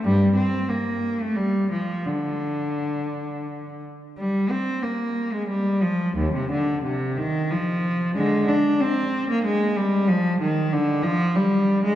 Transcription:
\new Staff \with { instrumentName = "Cello" } { \clef bass \time 3/4 \key d \phrygian \tempo 4 = 92 <g, g>8 c'8 bes8. a16 g8 f8 | d2~ d8 r8 | \key f \dorian g8 c'8 bes8. aes16 g8 f8 | ees,16 c16 d8 c8 ees8 f4 |
<d aes>8 d'8 c'8. bes16 aes8 g8 | f8 ees8 d8 f8 g8. aes16 | }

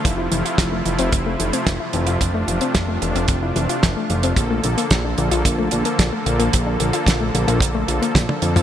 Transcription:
<<
  \new Staff \with { instrumentName = "Supersaw synth" } { \time 4/4 \key f \major \tempo 4 = 111 << { <c f a f'>1~ | <c f a f'>1 | <d f a'>1~ | <d f a'>1 | } \\ { e'1 | d'1 | bes1~ | bes1 | } >> }
  \new Staff \with { instrumentName = "Synth arpeggio sound" } { \clef bass \time 4/4 \key f \major e16 e'16 e16 f'16 e16 a16 e16 c'16 e16 a16 e16 c'16 e16 e'16 e16 f'16 | e16 a16 e16 c'16 e16 a16 e16 c'16 e16 e'16 e16 f'16 e16 a16 e16 c'16 | d16 a16 d16 bes16 d16 d'16 d16 f'16 d16 a16 d16 bes16 d16 a16 d16 bes16 | d16 d'16 d16 f'16 d16 a16 d16 bes16 d16 a16 d16 bes16 d16 d'16 d16 f'16 | }
  \new Staff \with { instrumentName = "Analog synth bass" } { \clef bass \time 4/4 \key f \major f,,8 f,,16 r16 f,,8 f,,16 f,,16 f,,8 f,,16 r16 f,,16 r16 f,,8 | f,,8 f,,16 r16 f,,8 f,,16 f,,16 f,,8 f,,16 r16 f,,16 r16 f,,8 | bes,,8 bes,,16 r16 bes,,8 bes,,16 bes,,16 bes,,8 bes,,16 r16 bes,,16 r16 bes,,8 | bes,,8 bes,,16 r16 bes,,8 bes,,16 bes,,16 bes,,8 bes,,16 r16 bes,,16 r16 f,8 | }
  \new DrumStaff \with { instrumentName = "Drums" } \drummode { \time 4/4 <hh bd>8 hh16 hh16 <hh bd sn>8 hh16 hh16 <hh bd>8 hh16 hh16 <hh bd sn>8 hh16 hh16 | <hh bd>8 hh16 hh16 <hh bd sn>8 hh16 hh16 <hh bd>8 hh16 hh16 <hh bd sn>8 hh16 hh16 | <hh bd>8 hh16 hh16 <hh bd sn>8 hh16 hh16 <hh bd>8 hh16 hh16 <hh bd sn>8 hh16 hh16 | <hh bd>8 hh16 hh16 <hh bd sn>8 hh16 hh16 <hh bd>8 hh16 hh16 <hh bd sn tommh>16 tommh16 hh16 <hh toml>16 | }
>>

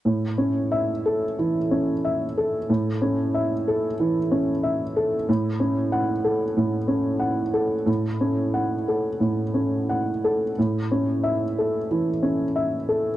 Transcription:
\new Staff \with { instrumentName = "Felt piano" } { \time 4/4 \key a \major \tempo 4 = 91 << { r4 e''4 r2 | r1 | r4 fis''4 r2 | r1 |
r4 e''4 r2 | } \\ { a,8 cis'4 a'8 e8 cis'8 e''8 a'8 | a,8 cis'8 e''8 a'8 e8 cis'8 e''8 a'8 | a,8 cis'4 a'8 a,8 cis'8 fis''8 a'8 | a,8 cis'8 fis''8 a'8 a,8 cis'8 fis''8 a'8 |
a,8 cis'4 a'8 e8 cis'8 e''8 a'8 | } >> }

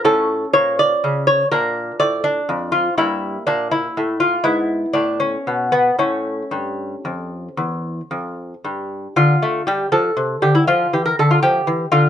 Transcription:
<<
  \new Staff \with { instrumentName = "Lute" } { \time 12/8 \key a \phrygian \tempo 4. = 81 a'4 cis''8 d''4 cis''8 bes'4 d''8 d'4 f'8 | e'4 d'8 e'4 f'8 e'4 d'8 cis'4 b8 | cis'1~ cis'8 r4. | f'4 g'8 a'4 g'16 e'16 f'8 g'16 bes'16 a'16 f'16 g'4 f'8 | }
  \new Staff \with { instrumentName = "Lute" } { \clef bass \time 12/8 \key a \phrygian << { cis'2. d'2. | bes2. b2. | a1. | r1. | } \\ { a,4 bes,4 cis4 bes,4 a,4 f,4 | g,4 bes,4 a,4 gis,4 a,4 b,4 | a,4 g,4 f,4 e,4 f,4 g,4 | d8 a8 g8 f8 c8 d8 f8 e8 d8 f8 e8 d8 | } >> }
>>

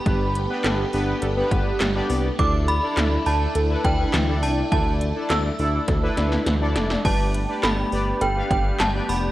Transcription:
<<
  \new Staff \with { instrumentName = "Synth bell" } { \time 4/4 \key g \mixolydian \tempo 4 = 103 b''8 r2. r8 | d'''8 b''4 a''4 g''4 a''8 | a''4 e'''2 r4 | a''4 b''4 g''8 g''8 a''8 b''8 | }
  \new Staff \with { instrumentName = "Analog polysynth" } { \time 4/4 \key g \mixolydian <b d' g' b'>8 r16 <b d' g' b'>8 r16 <b d' g' b'>8 r16 <b d' g' b'>8. r16 <b d' g' d''>8 r16 | <d' e' a' d''>8 r16 <d' e' a' d''>8 r16 <d' e' a' d''>8 r16 <d' e' a' b'>8. r16 <d' e' a' d''>8 r16 | <d' e' a' d''>8 r16 <d' e' a' d''>8 r16 <d' e' a' d''>8 r16 <d' e' a' b'>8. r16 <d' e' a' d''>8 r16 | <d' g' b' d''>8 r16 <d' g' b' d''>8 r16 <d' g' b' d''>8 r16 <d' g' b' f''>8. r16 <d' g' b' d''>8 r16 | }
  \new Staff \with { instrumentName = "String machine" } { \time 4/4 \key g \mixolydian << { <b g'>1 | <d' e'>1~ | <d' e'>1 | <b g'>1 | } \\ { a1~ | a1~ | a1~ | a1 | } >> }
  \new Staff \with { instrumentName = "Synth pluck" } { \time 4/4 \key g \mixolydian g8 r8 a'8 r8 a'8 b8 g8 b8 | e8 r8 a'8 r8 a'8 d'8 e8 d'8 | e8 r8 a'8 r8 a'8 d'8 e8 d'8 | g8 r8 a'8 r8 a'8 b8 g8 b8 | }
  \new Staff \with { instrumentName = "Analog synth bass" } { \clef bass \time 4/4 \key g \mixolydian g,,4 g,,8 g,,8 g,,8 g,,8 g,,8 c,8 | d,4 d,8 d,8 d,8 d,8 d,8 c,8 | d,4 d,8 d,8 d,8 d,8 d,8 f,,8 | g,,4 g,,8 g,,8 g,,8 g,,8 g,,8 f,,8 | }
  \new DrumStaff \with { instrumentName = "Drums" } \drummode { \time 4/4 <hh bd>8 hh8 <hc hh sn>8 hho8 hh8 <hh bd>8 <hc hh sn>8 hho8 | <hh bd>8 hh8 <hc hh sn>8 hho8 hh8 <hh bd>8 <hc hh sn>8 hho8 | <hh bd>8 hh8 <hc hh sn>8 hho8 <hh bd sn>8 <hh sn>16 sn16 <hh sn>8 <hh sn>16 sn16 | <cymc bd>8 hh8 <hc hh sn>8 hho8 hh8 <hh bd>8 <hc hh sn>8 hho8 | }
>>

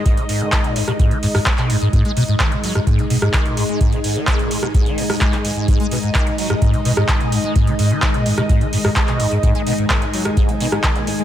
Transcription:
<<
  \new Staff \with { instrumentName = "String machine" } { \time 4/4 \key gis \minor \tempo 4 = 128 << { dis''1 | gis'1~ | gis'1 | dis''1~ |
dis''1 | gis''1 | } \\ { <gis dis'>1~ | <gis dis'>1~ | <gis dis'>1~ | <gis dis'>1~ |
<gis dis'>1~ | <gis dis'>1 | } >> }
  \new Staff \with { instrumentName = "Acid bass" } { \clef bass \time 4/4 \key gis \minor gis,16 cis16 gis,16 dis16 dis16 ais,16 gis,16 b,16 gis,16 dis16 gis,16 gis,16 b16 b,16 gis,16 gis,16 | gis,16 gis16 b,16 gis,16 dis16 ais,16 fis16 gis,16 gis,16 cis16 b,16 gis,16 dis16 ais,16 gis,16 gis16 | gis,16 cis16 gis,16 dis16 dis16 ais,16 gis,16 b,16 gis,16 dis16 ais,16 gis,16 gis,16 gis16 gis,16 gis,16 | gis,16 gis16 b,16 gis,16 dis16 ais,16 fis16 gis,16 gis,16 cis16 b,16 gis,16 dis16 ais,16 gis,16 gis16 |
gis,16 cis16 gis,16 dis16 dis16 ais,16 gis,16 b,16 gis,16 dis16 gis,16 gis,16 b16 b,16 gis,16 gis,16 | gis,16 gis16 b,16 gis,16 dis16 ais,16 fis16 gis,16 gis,16 cis16 b,16 gis,16 dis16 ais,16 gis,16 gis16 | }
  \new DrumStaff \with { instrumentName = "Drums" } \drummode { \time 4/4 <hh bd>16 hh16 hho16 hh16 <hc hh bd>16 hh16 hho16 <hh ss>16 <hh bd>16 hh16 hho16 <hho ss>16 <hc hh bd>16 <hc hh>16 hho16 hh16 | <hh bd>16 hh16 hho16 hh16 <hc hh bd>16 hh16 hho16 ss16 <hh bd>16 hh16 hho16 <hh ss>16 <hc hh bd>16 hh16 hho16 hh16 | <hh bd>16 hh16 hho16 hh16 <hc hh bd>16 hh16 hho16 ss16 <hh bd>16 hh16 hho16 <hho ss>16 <hc hh bd>16 <hc hh>16 hho16 hh16 | <hh bd>16 hh16 hho16 hh16 <hc hh bd>16 hh16 hho16 <hh ss>16 <hh bd>16 hh16 hho16 ss16 <hc hh bd>16 hh16 hho16 hh16 |
<hh bd>16 hh16 hho16 hh16 <hc hh bd>16 hh16 hho16 <hh ss>16 <hh bd>16 hh16 hho16 <hho ss>16 <hc hh bd>16 <hc hh>16 hho16 hh16 | <hh bd>16 hh16 hho16 hh16 <hc hh bd>16 hh16 hho16 <hh ss>16 <hh bd>16 hh16 hho16 <hh ss>16 <hc hh bd>16 hh16 hho16 hh16 | }
>>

